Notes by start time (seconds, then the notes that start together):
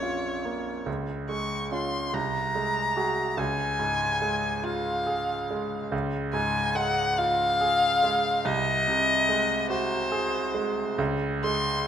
Already playing: A#1 F2 A#3 C#4 C#5
0.03 F4
0.45 A#3
0.86 C#2
1.29 G#3 C#6
1.72 C#4 F4 C6
2.13 C2 A#5
2.55 G#3
2.97 F#4 G#4
3.37 C#2 G#5
3.79 G#2
4.22 G#3
4.64 F4 F5
5.07 G#4
5.51 G#3
5.92 C#2
6.33 G#2 G#5
6.75 G#3 F#5
7.18 F4 F5
7.61 G#4
8.03 G#3
8.45 C2 D#5
8.87 C3
9.29 G#3
9.70 F#4 C5
10.12 G#4
10.55 G#3
10.98 C#2
11.44 G#3 C6